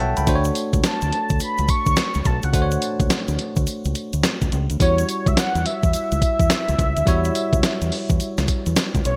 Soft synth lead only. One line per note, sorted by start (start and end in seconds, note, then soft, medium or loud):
0.86 1.43 A5 medium
1.42 1.71 B5 loud
1.70 2.28 C#6 loud
2.26 2.46 A5 loud
2.44 3.00 F#5 medium
4.82 5.29 C#5 loud
5.28 5.40 E5 medium
5.38 5.67 F#5 loud
5.66 8.77 E5 loud
9.06 9.16 C#5 loud